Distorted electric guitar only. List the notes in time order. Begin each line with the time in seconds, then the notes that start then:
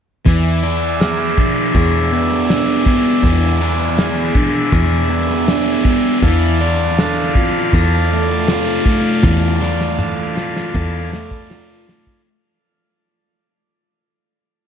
0.25 E3
0.64 D5
1.00 G#4
1.38 D4
1.75 G#4
2.12 B3
2.49 D4
2.86 B3
3.23 E3
3.61 D5
3.98 G#4
4.35 D4
4.72 G#4
5.09 B3
5.47 D4
5.85 B3
6.23 E3
6.61 D5
6.99 A4
7.36 F4
7.74 A4
8.12 A3
8.49 F4
8.86 A3
9.24 E3
9.61 D5
9.98 A4
10.36 F4
10.75 A4
11.12 A3
11.50 F4
11.87 A3